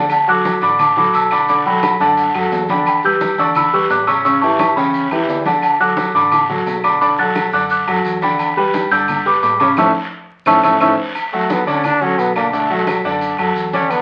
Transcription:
Already playing: D2
0.10 F#5 A5, high conga, low agogo, long guiro, claves, maracas
0.27 F#3 F#4 A4 D6 F#6, high conga, maracas
0.44 high conga, low agogo, short guiro, maracas
0.61 A1 D3 D4 D5 B5 D6, high conga, low agogo, short guiro, maracas
0.78 A5 D6, high conga, low conga, low agogo, long guiro, claves, maracas
0.97 F#3 F#4 A4 B5 D6, high conga, low conga, maracas
1.13 B1 A5 E6, high conga, low agogo, short guiro, maracas
1.31 D3 D4 D5 B5 D6, low agogo, short guiro, claves, maracas
1.48 D3 D4 D5 B5 D6, high conga, long guiro, maracas
1.65 F#3 F#4 A4 G5 B5, high conga, low agogo, maracas
1.83 F#5 B5, high conga, low agogo, short guiro, claves, maracas
2.00 F#2 D3 D4 D5 F#5 A5, high conga, short guiro, maracas
2.17 high conga, low agogo, long guiro, maracas
2.34 F#2 F#3 F#4 A4, high conga, low agogo, claves, maracas
2.52 E2, high conga, low timbale, short guiro, maracas
2.69 D3 D4 D5 G5 B5, high conga, low agogo, short guiro, maracas
2.86 G5 B5, high conga, low agogo, long guiro, claves, maracas
3.03 G3 G4 B4 E6 G6, high conga, maracas
3.20 high conga, low agogo, short guiro, maracas
3.38 E2 D3 D4 D5 C#6 E6, high conga, low agogo, short guiro, maracas
3.55 B5 E6, high conga, low conga, low agogo, long guiro, claves, maracas
3.73 G3 G4 B4 C#6 E6, high conga, maracas
3.90 A1 D6 F#6, high conga, low timbale, low agogo, short guiro, maracas
4.07 C#3 C#4 C#5 C#6 E6, low agogo, short guiro, claves, maracas
4.24 C#3 C#4 C#5 C#6 E6, high conga, long guiro, maracas
4.41 E3 E4 G4 A5 C#6, high conga, low agogo, maracas
4.59 A5 C#6, high conga, low agogo, short guiro, claves, maracas
4.76 E2 C#3 C#4 C#5 G5 B5, high conga, short guiro, maracas
4.93 high conga, low agogo, long guiro, maracas
5.11 E2 E3 E4 G4, high conga, low agogo, claves, maracas
5.28 D2, high conga, low timbale, short guiro, maracas
5.45 D3 D4 D5 F#5 A5, high conga, low agogo, short guiro, maracas
5.62 F#5 A5, high conga, low agogo, long guiro, claves, maracas
5.80 F#3 F#4 A4 D6 F#6, high conga, maracas
5.97 high conga, low agogo, short guiro, maracas
6.14 A1 D3 D4 D5 B5 D6, high conga, low agogo, short guiro, maracas
6.32 A5 D6, high conga, low conga, low agogo, long guiro, claves, maracas
6.49 F#3 F#4 A4, high conga, low conga, maracas
6.67 high conga, low timbale, low agogo, short guiro, maracas
6.84 D3 D4 D5 B5 D6, low agogo, short guiro, claves, maracas
7.01 D3 D4 D5 B5 D6, high conga, long guiro, maracas
7.18 F#3 F#4 A4 F#6 A6, high conga, low agogo, maracas
7.35 high conga, low agogo, short guiro, claves, maracas
7.52 F#2 D3 D4 D5 D6 F#6, short guiro, maracas
7.70 D6 F#6, high conga, low agogo, long guiro, maracas
7.87 F#2 F#3 F#4 A4, high conga, low agogo, claves, maracas
8.04 E2, high conga, short guiro, maracas
8.22 D3 D4 D5 G5 B5, high conga, low agogo, short guiro, maracas
8.39 high conga, low agogo, long guiro, claves, maracas
8.56 G3 G4 B4 G5 B5, high conga, maracas
8.73 high conga, low agogo, short guiro, maracas
8.91 G2 D3 D4 D5 E6 G6, high conga, low agogo, short guiro, maracas
9.08 high conga, low conga, low agogo, long guiro, claves, maracas
9.26 G3 G4 B4 B5 D6, high conga, maracas
9.43 A2 B5 D6, high conga, low timbale, low agogo, short guiro, maracas
9.60 C#3 C#4 C#5 B5 D6, high conga, low agogo, short guiro, claves, maracas
9.77 A1 A3 C#4 E4 A5 C#6 E6, high conga, high timbale, long guiro, claves, maracas
10.46 A1 A3 C#4 E4 A5 C#6 E6, high conga, high timbale, long guiro, claves, maracas
10.63 A1 A3 C#4 E4 A5 C#6 E6, high conga, high timbale, long guiro, claves, maracas
10.80 A1 A3 C#4 E4 A5 C#6 E6, high conga, high timbale, long guiro, claves, maracas
11.15 high conga, low agogo, long guiro, claves, maracas
11.33 F#3 A3 F#4 A4, high conga, maracas
11.49 B3, high conga, low agogo, short guiro, maracas
11.66 D2 D3 C#4 D4 D5, high conga, low agogo, short guiro, maracas
11.84 D4, high conga, low conga, low agogo, long guiro, claves, maracas
12.01 F#3 C#4 F#4 A4, high conga, maracas
12.18 B1 B3, high conga, low agogo, short guiro, maracas
12.36 D3 A#3 D4 D5, low agogo, short guiro, claves, maracas
12.53 D3 A3 D4 D5, high conga, long guiro, maracas
12.70 F#3 F#4 A4, high conga, low agogo, maracas
12.87 high conga, low agogo, short guiro, claves, maracas
13.04 F#2 D3 D4 D5, high conga, short guiro, maracas
13.21 high conga, low agogo, long guiro, maracas
13.38 F#2 F#3 F#4 A4, high conga, low agogo, claves, maracas
13.56 E2, high conga, short guiro, maracas
13.73 D3 C#4 D4 D5, high conga, low agogo, short guiro, maracas
13.90 B3, high conga, low agogo, long guiro, claves, maracas

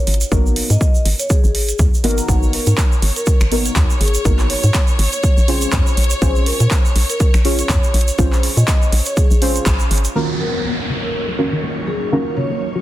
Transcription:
Already playing: C#5
0.07 G#1, open hi-hat
0.14 closed hi-hat
0.21 closed hi-hat, shaker
0.31 G#1 B3 D#4 F#4 A#4, kick, closed hi-hat, shaker
0.46 shaker
0.56 open hi-hat
0.70 G#2 D#5, closed hi-hat, shaker
0.81 kick, shaker
0.95 shaker
1.05 G#1, open hi-hat
1.19 C#5, closed hi-hat, shaker
1.30 G#4, kick, closed hi-hat, shaker
1.44 G#1, shaker
1.55 open hi-hat
1.69 closed hi-hat, shaker
1.79 D#2, kick, closed hi-hat, shaker
1.94 shaker
2.04 G#1 B3 D#4 F#4 A#4, open hi-hat
2.11 closed hi-hat
2.18 closed hi-hat, shaker
2.28 G#1 B3 D#4 F#4 A#4 C#5, kick, closed hi-hat, shaker
2.43 shaker
2.53 A#4, open hi-hat
2.67 G#2, closed hi-hat, shaker
2.78 kick, clap, shaker
2.92 shaker
3.02 G#1, open hi-hat
3.16 A#4, closed hi-hat, shaker
3.26 kick, closed hi-hat, shaker
3.41 G#1, finger snap, shaker
3.51 B3 D#4 F#4 A#4, open hi-hat
3.65 closed hi-hat, shaker
3.76 D#2, kick, clap, closed hi-hat, shaker
3.90 shaker
4.01 G#1 G#4, open hi-hat
4.08 closed hi-hat
4.14 closed hi-hat, shaker
4.25 G#1 B3 D#4 F#4 A#4, kick, closed hi-hat, shaker
4.39 clap, shaker
4.50 C#5, open hi-hat
4.63 G#2 C#5, closed hi-hat, shaker
4.74 finger snap, kick, clap, shaker
4.87 shaker
4.99 G#1, open hi-hat
5.12 C#5, closed hi-hat, shaker
5.23 kick, closed hi-hat, shaker
5.37 A#1, shaker
5.48 C#4 F4 G#4 C5, open hi-hat
5.61 closed hi-hat, shaker
5.72 F2, kick, clap, closed hi-hat, shaker
5.87 shaker
5.97 A#1, open hi-hat
6.04 closed hi-hat
6.10 closed hi-hat, shaker
6.22 A#1 C#4 F4 G#4 C5, kick, closed hi-hat, shaker
6.36 shaker
6.46 A#4, open hi-hat
6.60 A#2, closed hi-hat, shaker
6.71 kick, clap, shaker
6.85 shaker
6.96 A#1, open hi-hat
7.09 A#4, closed hi-hat, shaker
7.20 kick, closed hi-hat, shaker
7.34 A#1, finger snap, shaker
7.45 C#4 F4 G#4 C#5, open hi-hat
7.59 C#5, closed hi-hat, shaker
7.69 F2, kick, clap, closed hi-hat, shaker
7.84 shaker
7.94 A#1, open hi-hat
8.01 closed hi-hat
8.08 closed hi-hat, shaker
8.18 A#1 C#4 F4 G#4 C5, kick, closed hi-hat, shaker
8.32 clap, shaker
8.43 open hi-hat
8.57 A#2 D#5, closed hi-hat, shaker
8.68 finger snap, kick, clap, shaker
8.82 shaker
8.92 A#1, open hi-hat
9.05 C#5, closed hi-hat, shaker
9.17 G#4, kick, closed hi-hat, shaker
9.31 A#1, shaker
9.41 C#4 F4 G#4 C5, open hi-hat
9.56 closed hi-hat, shaker
9.66 A#1, kick, clap, closed hi-hat, shaker
9.79 shaker
9.91 G#1, open hi-hat
9.98 closed hi-hat
10.05 closed hi-hat, shaker
10.15 D#3 F#3 A#3 C#4 D#4 F4 F#4 A#4 C#5, crash, downlifter
10.40 F#4 A#4, open hi-hat
10.65 D#4
10.89 C#4, open hi-hat
11.03 A#4
11.28 F#4
11.38 D#3 C#4 F4 F#4 A#4, open hi-hat
11.52 D#4
11.63 A#4
11.87 F#4 G#4, open hi-hat
12.12 D#3 C#4 D#4 F4 F#4 A#4
12.37 C#4 C#5, open hi-hat
12.51 A#4 C#5
12.75 F#4

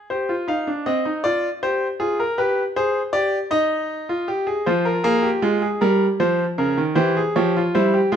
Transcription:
0.10 G4 C5
0.29 F4
0.48 D#4 F5
0.67 D4
0.86 C4 D#5
1.05 D#4
1.24 F4 D5
1.63 G4 C5
2.00 F4 G#4
2.20 A#4
2.38 G4 B4
2.76 G#4 C5
3.13 G4 D5
3.51 D#4 D#5
4.09 F4
4.28 G4
4.47 G#4
4.66 F3 F4 C5
4.85 A#4
5.04 A#3 G#4
5.22 G4
5.42 G#3 F4
5.62 G#4
5.81 G3 A#4
6.20 F3 C5
6.58 C#3 A#4
6.77 D#3
6.95 E3 G4 C5
7.17 G#4
7.36 F3 G4 C#5
7.57 F4
7.75 G3 E4 C5
7.94 G4
8.12 G#3 F4 G#4

